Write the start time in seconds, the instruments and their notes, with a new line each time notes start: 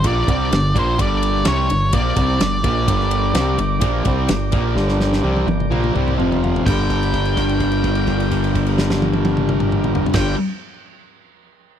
Already playing: tonewheel organ D4 G4 A#4
0.04 fingered electric bass A#1, distorted electric guitar A#2 F3 A#3, lead electric guitar D5, kick, ride
0.28 fingered electric bass C2, distorted electric guitar C3 G3 C4, lead electric guitar D5, kick, ride
0.51 fingered electric bass G1, distorted electric guitar G2 D3, snare, ride
0.75 fingered electric bass A#1, distorted electric guitar A#2 F3 A#3, kick, ride
0.79 lead electric guitar C5
0.99 fingered electric bass G1, distorted electric guitar G2 D3 G3, lead electric guitar D5, kick, ride
1.23 ride
1.45 fingered electric bass C2, distorted electric guitar C3 G3 C4, lead electric guitar C#5, snare, ride
1.70 fingered electric bass G1, distorted electric guitar G2 D3, ride
1.93 fingered electric bass A#1, distorted electric guitar A#2 F3 A#3, lead electric guitar D5, kick, ride
2.16 fingered electric bass C2, distorted electric guitar C3 G3 C4, kick, ride
2.39 fingered electric bass G1, distorted electric guitar G2 D3, snare, ride
2.63 fingered electric bass A#1, distorted electric guitar A#2 F3 A#3, kick, ride
2.85 fingered electric bass G1, distorted electric guitar G2 D3 G3, tonewheel organ D4 G4 A#4 D5, kick, ride
3.00 snare
3.11 ride
3.34 fingered electric bass C2, distorted electric guitar C3 G3 C4, snare, ride
3.57 fingered electric bass G1, distorted electric guitar G2 D3, ride
3.80 fingered electric bass A#1, distorted electric guitar A#2 F3 A#3, kick, ride
4.04 fingered electric bass C2, distorted electric guitar C3 G3 C4, kick, ride
4.28 fingered electric bass G1, distorted electric guitar G2 D3, snare, ride
4.52 fingered electric bass A#1, distorted electric guitar A#2 F3 A#3, kick, ride
4.75 fingered electric bass G1, distorted electric guitar G2 D3 G3, snare
4.88 snare
5.00 snare
5.13 snare
5.22 fingered electric bass C2, distorted electric guitar C3 G3 C4, high tom
5.36 high tom
5.46 fingered electric bass G1, distorted electric guitar G2 D3, high tom
5.60 mid tom
5.70 fingered electric bass A#1, distorted electric guitar A#2 F3 A#3, mid tom
5.84 mid tom
5.95 fingered electric bass C2, distorted electric guitar C3 G3 C4, mid tom
6.08 mid tom
6.18 fingered electric bass F1, distorted electric guitar F2 C3 F3, tonewheel organ C4 F4 C5 F5, mid tom
6.32 floor tom
6.44 floor tom
6.56 floor tom
6.66 fingered electric bass G1, distorted electric guitar G2 D3, tonewheel organ F4 G4 A#4 D5, lead electric guitar G5, kick, crash
6.70 distorted electric guitar G3
6.90 kick, crash
7.03 crash
7.14 kick, crash
7.25 crash
7.37 kick, crash
7.49 crash
7.60 kick, crash
7.71 crash
7.84 kick, crash
7.95 crash
8.07 kick, crash
8.20 crash
8.31 kick, crash
8.44 crash
8.55 kick, crash
8.66 crash
8.78 snare
8.90 snare
9.02 high tom
9.13 high tom
9.25 high tom
9.37 mid tom
9.49 mid tom
9.60 mid tom
9.72 mid tom
9.84 mid tom
9.95 floor tom
10.06 floor tom
10.12 fingered electric bass G1, distorted electric guitar G2 D3, tonewheel organ F4 A#4 D5, lead electric guitar G5, kick, snare, crash
10.16 distorted electric guitar G3, tonewheel organ G4